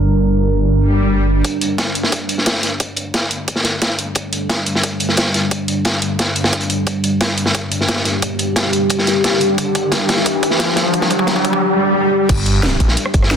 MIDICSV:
0, 0, Header, 1, 6, 480
1, 0, Start_track
1, 0, Key_signature, -2, "minor"
1, 0, Tempo, 338983
1, 127, Time_signature, 4, 2, 24, 8
1, 18925, End_track
2, 0, Start_track
2, 0, Title_t, "Ambient pad"
2, 0, Program_c, 0, 92
2, 0, Note_on_c, 0, 55, 83
2, 0, Note_on_c, 0, 62, 74
2, 0, Note_on_c, 0, 70, 87
2, 1989, Note_off_c, 0, 55, 0
2, 1990, Note_off_c, 0, 62, 0
2, 2013, Note_off_c, 0, 70, 0
2, 2045, Note_on_c, 0, 69, 88
2, 2046, Note_on_c, 0, 55, 79
2, 2046, Note_on_c, 0, 62, 72
2, 9693, Note_off_c, 0, 69, 0
2, 9727, Note_on_c, 0, 67, 94
2, 17350, Note_off_c, 0, 55, 0
2, 17350, Note_off_c, 0, 62, 0
2, 17374, Note_off_c, 0, 67, 0
2, 18925, End_track
3, 0, Start_track
3, 0, Title_t, "Detuned saw bass"
3, 0, Program_c, 1, 39
3, 0, Note_on_c, 1, 31, 91
3, 2023, Note_off_c, 1, 31, 0
3, 17407, Note_on_c, 1, 31, 100
3, 18108, Note_off_c, 1, 31, 0
3, 18127, Note_on_c, 1, 34, 99
3, 18348, Note_off_c, 1, 34, 0
3, 18608, Note_on_c, 1, 31, 95
3, 18925, Note_off_c, 1, 31, 0
3, 18925, End_track
4, 0, Start_track
4, 0, Title_t, "Riser"
4, 0, Program_c, 2, 103
4, 9727, Note_on_c, 2, 60, 79
4, 16447, Note_off_c, 2, 60, 0
4, 18925, End_track
5, 0, Start_track
5, 0, Title_t, "Swell"
5, 0, Program_c, 3, 103
5, 1087, Note_on_c, 3, 60, 79
5, 2047, Note_off_c, 3, 60, 0
5, 16447, Note_on_c, 3, 60, 82
5, 17407, Note_off_c, 3, 60, 0
5, 18925, End_track
6, 0, Start_track
6, 0, Title_t, "Drums"
6, 2046, Note_on_c, 9, 36, 100
6, 2046, Note_on_c, 9, 42, 92
6, 2049, Note_off_c, 9, 42, 0
6, 2049, Note_on_c, 9, 42, 89
6, 2188, Note_off_c, 9, 36, 0
6, 2190, Note_off_c, 9, 42, 0
6, 2286, Note_on_c, 9, 42, 71
6, 2292, Note_off_c, 9, 42, 0
6, 2292, Note_on_c, 9, 42, 70
6, 2433, Note_off_c, 9, 42, 0
6, 2525, Note_on_c, 9, 38, 104
6, 2525, Note_on_c, 9, 42, 89
6, 2527, Note_on_c, 9, 36, 99
6, 2532, Note_off_c, 9, 42, 0
6, 2532, Note_on_c, 9, 42, 94
6, 2666, Note_off_c, 9, 38, 0
6, 2668, Note_off_c, 9, 36, 0
6, 2673, Note_off_c, 9, 42, 0
6, 2765, Note_on_c, 9, 42, 66
6, 2769, Note_off_c, 9, 42, 0
6, 2769, Note_on_c, 9, 42, 60
6, 2880, Note_on_c, 9, 38, 61
6, 2910, Note_off_c, 9, 42, 0
6, 3005, Note_on_c, 9, 42, 92
6, 3007, Note_on_c, 9, 36, 95
6, 3012, Note_off_c, 9, 42, 0
6, 3012, Note_on_c, 9, 42, 87
6, 3022, Note_off_c, 9, 38, 0
6, 3148, Note_off_c, 9, 36, 0
6, 3154, Note_off_c, 9, 42, 0
6, 3243, Note_on_c, 9, 42, 73
6, 3245, Note_off_c, 9, 42, 0
6, 3245, Note_on_c, 9, 42, 62
6, 3372, Note_on_c, 9, 38, 37
6, 3387, Note_off_c, 9, 42, 0
6, 3485, Note_on_c, 9, 42, 94
6, 3487, Note_on_c, 9, 36, 96
6, 3489, Note_off_c, 9, 42, 0
6, 3489, Note_on_c, 9, 42, 85
6, 3493, Note_off_c, 9, 38, 0
6, 3493, Note_on_c, 9, 38, 104
6, 3607, Note_off_c, 9, 38, 0
6, 3607, Note_on_c, 9, 38, 37
6, 3628, Note_off_c, 9, 36, 0
6, 3631, Note_off_c, 9, 42, 0
6, 3725, Note_on_c, 9, 42, 68
6, 3726, Note_off_c, 9, 38, 0
6, 3726, Note_on_c, 9, 38, 35
6, 3729, Note_off_c, 9, 42, 0
6, 3729, Note_on_c, 9, 42, 61
6, 3868, Note_off_c, 9, 38, 0
6, 3870, Note_off_c, 9, 42, 0
6, 3964, Note_on_c, 9, 42, 81
6, 3966, Note_off_c, 9, 42, 0
6, 3966, Note_on_c, 9, 42, 90
6, 3967, Note_on_c, 9, 36, 98
6, 4107, Note_off_c, 9, 42, 0
6, 4108, Note_off_c, 9, 36, 0
6, 4199, Note_on_c, 9, 42, 64
6, 4205, Note_off_c, 9, 42, 0
6, 4205, Note_on_c, 9, 42, 66
6, 4347, Note_off_c, 9, 42, 0
6, 4446, Note_on_c, 9, 42, 88
6, 4447, Note_on_c, 9, 36, 102
6, 4448, Note_on_c, 9, 38, 112
6, 4453, Note_off_c, 9, 42, 0
6, 4453, Note_on_c, 9, 42, 85
6, 4588, Note_off_c, 9, 36, 0
6, 4589, Note_off_c, 9, 38, 0
6, 4594, Note_off_c, 9, 42, 0
6, 4685, Note_on_c, 9, 42, 67
6, 4827, Note_off_c, 9, 42, 0
6, 4925, Note_on_c, 9, 42, 92
6, 4927, Note_on_c, 9, 36, 90
6, 4932, Note_off_c, 9, 42, 0
6, 4932, Note_on_c, 9, 42, 80
6, 5035, Note_on_c, 9, 38, 45
6, 5068, Note_off_c, 9, 36, 0
6, 5074, Note_off_c, 9, 42, 0
6, 5153, Note_off_c, 9, 38, 0
6, 5153, Note_on_c, 9, 38, 49
6, 5165, Note_on_c, 9, 42, 63
6, 5171, Note_off_c, 9, 42, 0
6, 5171, Note_on_c, 9, 42, 74
6, 5295, Note_off_c, 9, 38, 0
6, 5312, Note_off_c, 9, 42, 0
6, 5405, Note_on_c, 9, 42, 89
6, 5406, Note_on_c, 9, 36, 98
6, 5407, Note_on_c, 9, 38, 105
6, 5516, Note_off_c, 9, 38, 0
6, 5516, Note_on_c, 9, 38, 33
6, 5547, Note_off_c, 9, 42, 0
6, 5548, Note_off_c, 9, 36, 0
6, 5643, Note_on_c, 9, 42, 64
6, 5645, Note_off_c, 9, 42, 0
6, 5645, Note_on_c, 9, 42, 66
6, 5658, Note_off_c, 9, 38, 0
6, 5787, Note_off_c, 9, 42, 0
6, 5877, Note_on_c, 9, 42, 80
6, 5885, Note_off_c, 9, 42, 0
6, 5885, Note_on_c, 9, 42, 85
6, 5886, Note_on_c, 9, 36, 96
6, 6027, Note_off_c, 9, 42, 0
6, 6028, Note_off_c, 9, 36, 0
6, 6126, Note_on_c, 9, 42, 66
6, 6129, Note_off_c, 9, 42, 0
6, 6129, Note_on_c, 9, 42, 65
6, 6271, Note_off_c, 9, 42, 0
6, 6364, Note_on_c, 9, 38, 115
6, 6365, Note_on_c, 9, 42, 83
6, 6366, Note_on_c, 9, 36, 100
6, 6367, Note_off_c, 9, 42, 0
6, 6367, Note_on_c, 9, 42, 87
6, 6506, Note_off_c, 9, 38, 0
6, 6508, Note_off_c, 9, 36, 0
6, 6508, Note_off_c, 9, 42, 0
6, 6602, Note_on_c, 9, 42, 64
6, 6606, Note_off_c, 9, 42, 0
6, 6606, Note_on_c, 9, 42, 66
6, 6732, Note_on_c, 9, 38, 51
6, 6747, Note_off_c, 9, 42, 0
6, 6845, Note_on_c, 9, 42, 84
6, 6846, Note_off_c, 9, 42, 0
6, 6846, Note_on_c, 9, 36, 93
6, 6846, Note_on_c, 9, 42, 90
6, 6873, Note_off_c, 9, 38, 0
6, 6987, Note_off_c, 9, 42, 0
6, 6988, Note_off_c, 9, 36, 0
6, 7080, Note_on_c, 9, 42, 68
6, 7086, Note_off_c, 9, 42, 0
6, 7086, Note_on_c, 9, 42, 60
6, 7203, Note_on_c, 9, 38, 42
6, 7228, Note_off_c, 9, 42, 0
6, 7318, Note_on_c, 9, 42, 86
6, 7326, Note_off_c, 9, 42, 0
6, 7326, Note_on_c, 9, 36, 100
6, 7326, Note_on_c, 9, 42, 88
6, 7334, Note_off_c, 9, 38, 0
6, 7334, Note_on_c, 9, 38, 110
6, 7445, Note_off_c, 9, 38, 0
6, 7445, Note_on_c, 9, 38, 38
6, 7467, Note_off_c, 9, 42, 0
6, 7468, Note_off_c, 9, 36, 0
6, 7566, Note_on_c, 9, 42, 63
6, 7570, Note_off_c, 9, 42, 0
6, 7570, Note_on_c, 9, 42, 70
6, 7571, Note_off_c, 9, 38, 0
6, 7571, Note_on_c, 9, 38, 35
6, 7712, Note_off_c, 9, 42, 0
6, 7713, Note_off_c, 9, 38, 0
6, 7806, Note_on_c, 9, 36, 97
6, 7806, Note_on_c, 9, 42, 86
6, 7812, Note_off_c, 9, 42, 0
6, 7812, Note_on_c, 9, 42, 82
6, 7948, Note_off_c, 9, 36, 0
6, 7954, Note_off_c, 9, 42, 0
6, 8045, Note_on_c, 9, 42, 60
6, 8051, Note_off_c, 9, 42, 0
6, 8051, Note_on_c, 9, 42, 67
6, 8192, Note_off_c, 9, 42, 0
6, 8281, Note_on_c, 9, 42, 92
6, 8286, Note_off_c, 9, 42, 0
6, 8286, Note_on_c, 9, 36, 101
6, 8286, Note_on_c, 9, 42, 87
6, 8287, Note_on_c, 9, 38, 120
6, 8427, Note_off_c, 9, 36, 0
6, 8427, Note_off_c, 9, 42, 0
6, 8429, Note_off_c, 9, 38, 0
6, 8521, Note_on_c, 9, 42, 64
6, 8524, Note_off_c, 9, 42, 0
6, 8524, Note_on_c, 9, 42, 66
6, 8666, Note_off_c, 9, 42, 0
6, 8766, Note_on_c, 9, 36, 90
6, 8766, Note_on_c, 9, 42, 87
6, 8769, Note_off_c, 9, 42, 0
6, 8769, Note_on_c, 9, 42, 70
6, 8773, Note_on_c, 9, 38, 98
6, 8908, Note_off_c, 9, 36, 0
6, 8911, Note_off_c, 9, 42, 0
6, 8914, Note_off_c, 9, 38, 0
6, 9000, Note_on_c, 9, 42, 69
6, 9005, Note_off_c, 9, 42, 0
6, 9005, Note_on_c, 9, 42, 56
6, 9122, Note_on_c, 9, 38, 104
6, 9135, Note_off_c, 9, 42, 0
6, 9135, Note_on_c, 9, 42, 70
6, 9244, Note_off_c, 9, 42, 0
6, 9244, Note_on_c, 9, 42, 88
6, 9246, Note_on_c, 9, 36, 96
6, 9264, Note_off_c, 9, 38, 0
6, 9355, Note_off_c, 9, 42, 0
6, 9355, Note_on_c, 9, 42, 62
6, 9388, Note_off_c, 9, 36, 0
6, 9485, Note_off_c, 9, 42, 0
6, 9485, Note_on_c, 9, 42, 59
6, 9487, Note_off_c, 9, 42, 0
6, 9487, Note_on_c, 9, 42, 65
6, 9629, Note_off_c, 9, 42, 0
6, 9722, Note_on_c, 9, 42, 80
6, 9725, Note_off_c, 9, 42, 0
6, 9725, Note_on_c, 9, 42, 87
6, 9726, Note_on_c, 9, 36, 111
6, 9866, Note_off_c, 9, 42, 0
6, 9868, Note_off_c, 9, 36, 0
6, 9966, Note_on_c, 9, 42, 63
6, 9970, Note_off_c, 9, 42, 0
6, 9970, Note_on_c, 9, 42, 62
6, 10112, Note_off_c, 9, 42, 0
6, 10205, Note_on_c, 9, 42, 83
6, 10206, Note_on_c, 9, 36, 109
6, 10207, Note_off_c, 9, 42, 0
6, 10207, Note_on_c, 9, 42, 92
6, 10208, Note_on_c, 9, 38, 127
6, 10347, Note_off_c, 9, 36, 0
6, 10349, Note_off_c, 9, 42, 0
6, 10350, Note_off_c, 9, 38, 0
6, 10445, Note_on_c, 9, 42, 63
6, 10559, Note_on_c, 9, 38, 64
6, 10586, Note_off_c, 9, 42, 0
6, 10683, Note_on_c, 9, 42, 79
6, 10686, Note_off_c, 9, 42, 0
6, 10686, Note_on_c, 9, 36, 99
6, 10686, Note_on_c, 9, 42, 91
6, 10700, Note_off_c, 9, 38, 0
6, 10827, Note_off_c, 9, 36, 0
6, 10827, Note_off_c, 9, 42, 0
6, 10925, Note_on_c, 9, 42, 58
6, 10928, Note_off_c, 9, 42, 0
6, 10928, Note_on_c, 9, 42, 67
6, 11054, Note_on_c, 9, 38, 37
6, 11070, Note_off_c, 9, 42, 0
6, 11164, Note_off_c, 9, 38, 0
6, 11164, Note_on_c, 9, 38, 108
6, 11165, Note_on_c, 9, 42, 86
6, 11166, Note_on_c, 9, 36, 110
6, 11167, Note_off_c, 9, 42, 0
6, 11167, Note_on_c, 9, 42, 77
6, 11275, Note_off_c, 9, 38, 0
6, 11275, Note_on_c, 9, 38, 47
6, 11307, Note_off_c, 9, 36, 0
6, 11308, Note_off_c, 9, 42, 0
6, 11399, Note_off_c, 9, 38, 0
6, 11399, Note_on_c, 9, 38, 38
6, 11405, Note_on_c, 9, 42, 66
6, 11414, Note_off_c, 9, 42, 0
6, 11414, Note_on_c, 9, 42, 69
6, 11541, Note_off_c, 9, 38, 0
6, 11555, Note_off_c, 9, 42, 0
6, 11645, Note_on_c, 9, 42, 92
6, 11646, Note_on_c, 9, 36, 111
6, 11652, Note_off_c, 9, 42, 0
6, 11652, Note_on_c, 9, 42, 83
6, 11787, Note_off_c, 9, 36, 0
6, 11794, Note_off_c, 9, 42, 0
6, 11881, Note_on_c, 9, 42, 67
6, 11885, Note_off_c, 9, 42, 0
6, 11885, Note_on_c, 9, 42, 66
6, 12027, Note_off_c, 9, 42, 0
6, 12121, Note_on_c, 9, 38, 121
6, 12126, Note_on_c, 9, 36, 102
6, 12126, Note_on_c, 9, 42, 91
6, 12128, Note_off_c, 9, 42, 0
6, 12128, Note_on_c, 9, 42, 89
6, 12262, Note_off_c, 9, 38, 0
6, 12268, Note_off_c, 9, 36, 0
6, 12270, Note_off_c, 9, 42, 0
6, 12361, Note_on_c, 9, 42, 67
6, 12366, Note_off_c, 9, 42, 0
6, 12366, Note_on_c, 9, 42, 67
6, 12507, Note_off_c, 9, 42, 0
6, 12597, Note_on_c, 9, 42, 81
6, 12606, Note_off_c, 9, 42, 0
6, 12606, Note_on_c, 9, 36, 100
6, 12606, Note_on_c, 9, 42, 96
6, 12723, Note_on_c, 9, 38, 42
6, 12748, Note_off_c, 9, 36, 0
6, 12748, Note_off_c, 9, 42, 0
6, 12844, Note_on_c, 9, 42, 67
6, 12845, Note_off_c, 9, 38, 0
6, 12845, Note_on_c, 9, 38, 48
6, 12847, Note_off_c, 9, 42, 0
6, 12847, Note_on_c, 9, 42, 64
6, 12986, Note_off_c, 9, 38, 0
6, 12988, Note_off_c, 9, 42, 0
6, 13086, Note_on_c, 9, 42, 88
6, 13087, Note_on_c, 9, 36, 106
6, 13089, Note_on_c, 9, 38, 120
6, 13093, Note_off_c, 9, 42, 0
6, 13093, Note_on_c, 9, 42, 87
6, 13219, Note_off_c, 9, 38, 0
6, 13219, Note_on_c, 9, 38, 39
6, 13228, Note_off_c, 9, 36, 0
6, 13235, Note_off_c, 9, 42, 0
6, 13322, Note_on_c, 9, 42, 69
6, 13326, Note_off_c, 9, 42, 0
6, 13326, Note_on_c, 9, 42, 65
6, 13361, Note_off_c, 9, 38, 0
6, 13468, Note_off_c, 9, 42, 0
6, 13566, Note_on_c, 9, 42, 91
6, 13567, Note_on_c, 9, 36, 110
6, 13574, Note_off_c, 9, 42, 0
6, 13574, Note_on_c, 9, 42, 88
6, 13708, Note_off_c, 9, 36, 0
6, 13716, Note_off_c, 9, 42, 0
6, 13806, Note_on_c, 9, 42, 71
6, 13807, Note_on_c, 9, 36, 106
6, 13810, Note_off_c, 9, 42, 0
6, 13810, Note_on_c, 9, 42, 71
6, 13948, Note_off_c, 9, 36, 0
6, 13952, Note_off_c, 9, 42, 0
6, 14042, Note_on_c, 9, 38, 109
6, 14047, Note_on_c, 9, 36, 112
6, 14047, Note_on_c, 9, 42, 93
6, 14049, Note_off_c, 9, 42, 0
6, 14049, Note_on_c, 9, 42, 94
6, 14184, Note_off_c, 9, 38, 0
6, 14188, Note_off_c, 9, 36, 0
6, 14191, Note_off_c, 9, 42, 0
6, 14284, Note_on_c, 9, 42, 80
6, 14285, Note_on_c, 9, 38, 108
6, 14287, Note_off_c, 9, 42, 0
6, 14287, Note_on_c, 9, 36, 102
6, 14287, Note_on_c, 9, 42, 73
6, 14397, Note_off_c, 9, 38, 0
6, 14397, Note_on_c, 9, 38, 59
6, 14428, Note_off_c, 9, 36, 0
6, 14428, Note_off_c, 9, 42, 0
6, 14527, Note_on_c, 9, 36, 106
6, 14527, Note_on_c, 9, 42, 89
6, 14539, Note_off_c, 9, 38, 0
6, 14669, Note_off_c, 9, 36, 0
6, 14669, Note_off_c, 9, 42, 0
6, 14767, Note_on_c, 9, 36, 110
6, 14767, Note_on_c, 9, 42, 62
6, 14769, Note_off_c, 9, 42, 0
6, 14769, Note_on_c, 9, 42, 72
6, 14875, Note_on_c, 9, 38, 41
6, 14909, Note_off_c, 9, 36, 0
6, 14911, Note_off_c, 9, 42, 0
6, 14999, Note_off_c, 9, 38, 0
6, 14999, Note_on_c, 9, 38, 121
6, 15005, Note_on_c, 9, 42, 86
6, 15006, Note_off_c, 9, 42, 0
6, 15006, Note_on_c, 9, 42, 93
6, 15007, Note_on_c, 9, 36, 112
6, 15122, Note_off_c, 9, 38, 0
6, 15122, Note_on_c, 9, 38, 41
6, 15148, Note_off_c, 9, 42, 0
6, 15149, Note_off_c, 9, 36, 0
6, 15239, Note_off_c, 9, 38, 0
6, 15239, Note_on_c, 9, 38, 95
6, 15247, Note_on_c, 9, 36, 110
6, 15247, Note_on_c, 9, 42, 68
6, 15250, Note_off_c, 9, 42, 0
6, 15250, Note_on_c, 9, 42, 75
6, 15381, Note_off_c, 9, 38, 0
6, 15389, Note_off_c, 9, 36, 0
6, 15391, Note_off_c, 9, 42, 0
6, 15486, Note_on_c, 9, 42, 59
6, 15487, Note_off_c, 9, 42, 0
6, 15487, Note_on_c, 9, 36, 111
6, 15487, Note_on_c, 9, 42, 95
6, 15594, Note_on_c, 9, 38, 60
6, 15607, Note_off_c, 9, 36, 0
6, 15607, Note_on_c, 9, 36, 93
6, 15628, Note_off_c, 9, 42, 0
6, 15719, Note_on_c, 9, 42, 70
6, 15727, Note_off_c, 9, 36, 0
6, 15727, Note_off_c, 9, 42, 0
6, 15727, Note_on_c, 9, 36, 106
6, 15727, Note_on_c, 9, 42, 72
6, 15736, Note_off_c, 9, 38, 0
6, 15847, Note_off_c, 9, 36, 0
6, 15847, Note_on_c, 9, 36, 98
6, 15868, Note_off_c, 9, 42, 0
6, 15961, Note_on_c, 9, 38, 112
6, 15967, Note_off_c, 9, 36, 0
6, 15967, Note_on_c, 9, 36, 109
6, 15967, Note_on_c, 9, 42, 95
6, 15970, Note_off_c, 9, 42, 0
6, 15970, Note_on_c, 9, 42, 82
6, 16087, Note_off_c, 9, 36, 0
6, 16087, Note_on_c, 9, 36, 90
6, 16102, Note_off_c, 9, 38, 0
6, 16111, Note_off_c, 9, 42, 0
6, 16207, Note_off_c, 9, 36, 0
6, 16207, Note_on_c, 9, 36, 102
6, 16207, Note_on_c, 9, 42, 71
6, 16210, Note_off_c, 9, 42, 0
6, 16210, Note_on_c, 9, 42, 63
6, 16327, Note_off_c, 9, 36, 0
6, 16327, Note_on_c, 9, 36, 93
6, 16352, Note_off_c, 9, 42, 0
6, 16468, Note_off_c, 9, 36, 0
6, 17406, Note_on_c, 9, 42, 96
6, 17406, Note_on_c, 9, 49, 106
6, 17407, Note_on_c, 9, 36, 122
6, 17408, Note_off_c, 9, 42, 0
6, 17408, Note_on_c, 9, 42, 94
6, 17548, Note_off_c, 9, 49, 0
6, 17549, Note_off_c, 9, 36, 0
6, 17550, Note_off_c, 9, 42, 0
6, 17646, Note_on_c, 9, 42, 72
6, 17652, Note_off_c, 9, 42, 0
6, 17652, Note_on_c, 9, 42, 66
6, 17793, Note_off_c, 9, 42, 0
6, 17885, Note_on_c, 9, 38, 126
6, 17885, Note_on_c, 9, 42, 97
6, 17887, Note_off_c, 9, 38, 0
6, 17887, Note_off_c, 9, 42, 0
6, 17887, Note_on_c, 9, 38, 118
6, 17887, Note_on_c, 9, 42, 92
6, 18028, Note_off_c, 9, 38, 0
6, 18028, Note_off_c, 9, 42, 0
6, 18126, Note_on_c, 9, 42, 70
6, 18127, Note_on_c, 9, 36, 62
6, 18128, Note_off_c, 9, 42, 0
6, 18128, Note_on_c, 9, 42, 70
6, 18239, Note_on_c, 9, 38, 57
6, 18269, Note_off_c, 9, 36, 0
6, 18270, Note_off_c, 9, 42, 0
6, 18366, Note_on_c, 9, 42, 102
6, 18380, Note_off_c, 9, 38, 0
6, 18380, Note_off_c, 9, 42, 0
6, 18380, Note_on_c, 9, 42, 89
6, 18487, Note_on_c, 9, 37, 51
6, 18522, Note_off_c, 9, 42, 0
6, 18602, Note_on_c, 9, 42, 67
6, 18607, Note_on_c, 9, 36, 107
6, 18608, Note_off_c, 9, 42, 0
6, 18608, Note_on_c, 9, 42, 69
6, 18628, Note_off_c, 9, 37, 0
6, 18727, Note_on_c, 9, 37, 36
6, 18734, Note_on_c, 9, 38, 40
6, 18749, Note_off_c, 9, 36, 0
6, 18749, Note_off_c, 9, 42, 0
6, 18846, Note_off_c, 9, 38, 0
6, 18846, Note_on_c, 9, 38, 122
6, 18846, Note_on_c, 9, 42, 99
6, 18847, Note_off_c, 9, 42, 0
6, 18847, Note_on_c, 9, 42, 91
6, 18854, Note_off_c, 9, 38, 0
6, 18854, Note_on_c, 9, 38, 115
6, 18868, Note_off_c, 9, 37, 0
6, 18925, Note_off_c, 9, 38, 0
6, 18925, Note_off_c, 9, 42, 0
6, 18925, End_track
0, 0, End_of_file